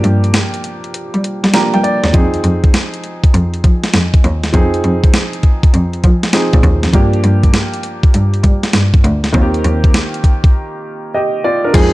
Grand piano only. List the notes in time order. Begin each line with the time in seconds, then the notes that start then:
Already playing: F3 A#3 D4 G4
1.53 F3 A#3 D4 G4 A#5
1.74 G5
1.84 D5
2.13 F3 C4 D#4 G#4
4.52 F3 C4 D#4 G#4
6.33 F3 C4 D#4 G#4
6.93 F3 A#3 D4 G4
9.32 D#3 A#3 C4 F4
9.41 G4
11.15 G4 D#5
11.44 F4 D5
11.64 D4 A#4
11.74 F3 G#3 C4 D#4 G#4